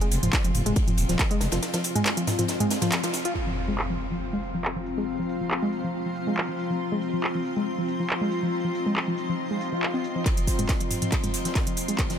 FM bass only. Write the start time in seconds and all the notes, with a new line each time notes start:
0.11 F1
0.23 F1
0.45 F1
0.55 F1
0.66 F1
0.98 D#1
1.09 D#1
1.41 F1
1.52 F1